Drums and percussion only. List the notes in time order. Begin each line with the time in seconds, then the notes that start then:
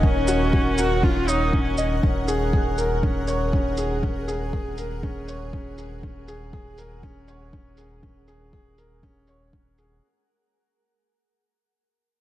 0.03 kick
0.28 shaker
0.53 kick
0.78 shaker
1.03 kick
1.28 shaker
1.53 kick
1.78 shaker
2.03 kick
2.28 shaker
2.53 kick
2.78 shaker
3.03 kick
3.28 shaker
3.53 kick
3.77 shaker
4.03 kick
4.28 shaker
4.53 kick
4.78 shaker
5.03 kick
5.28 shaker
5.53 kick
5.78 shaker
6.03 kick
6.28 shaker
6.53 kick
6.78 shaker
7.03 kick
7.28 shaker
7.53 kick
7.77 shaker
8.03 kick
8.28 shaker
8.53 kick
8.78 shaker
9.03 kick
9.27 shaker
9.53 kick
9.78 shaker